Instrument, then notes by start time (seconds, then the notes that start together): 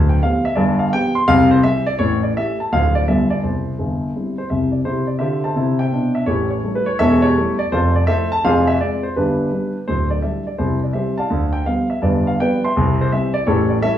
grand piano
Already playing: D1 D2
0.09 G5
0.23 F3 B3 G4 F5
0.45 E5
0.55 G1 G2 D5
0.79 F5
0.93 F3 B3 G4 G5
1.15 C6
1.28 C2 C3 F5
1.51 C5
1.63 E3 G3 G4 E5
1.86 D5
1.99 A1 A2 C#5
2.23 D5
2.37 E3 A3 G4 E5
2.60 A5
2.72 D1 D2 F3 A3 F4 F5
2.95 D5
3.08 G1 G2 G3 B3 F4 E5
3.30 D5
3.43 C2 C3 C5
3.79 G1 G2
4.16 G3 C4 E4
4.38 C5
4.50 C2 C3 E5
4.72 D5
4.85 C3 E4 G4 C5
5.07 D5
5.19 D3 F4 G4 C5 E5
5.44 C5 E5 A5
5.55 C3 E4
5.79 C5 E5 G5
5.92 B2 D4
6.15 E5
6.26 A1 A2 G4 A4 C#5
6.50 C#5
6.64 G3 A3 E4
6.75 B4
6.86 C#5
6.99 E1 E2 A4 C#5 E5
7.22 G4 A4 C#5
7.36 G3 A3 E4
7.59 D5
7.72 F1 F2 F4 A4 C5
7.96 D5
8.07 F3 A3 E4 A4 C5 E5
8.32 A5
8.44 F1 F2 G#4 C5 F5
8.67 E5
8.81 G#3 C4 F4 D5
9.03 C5
9.16 G1 G2 D4 G4 B4
9.52 G3 D4
9.88 D1 D2 C5
10.10 D5
10.22 G3 D4 E5
10.47 D5
10.58 C2 C3 E4 G4 C5
10.84 D5
10.93 E3 G3 C4 G4 C5 E5
11.18 D5 F5 A5
11.30 D2 D3
11.53 G5
11.66 F3 G3 B3 F5
11.90 E5
12.02 G1 G2 G4 B4 D5
12.27 F5
12.40 F3 G3 B3 B4 D5 G5
12.64 E5 G5 C6
12.77 C2 C3
13.01 C5
13.12 E3 G3 C4 E5
13.34 D5
13.46 A1 A2 G4 A4 C#5
13.69 D5
13.82 G3 A3 E4 A4 C#5 E5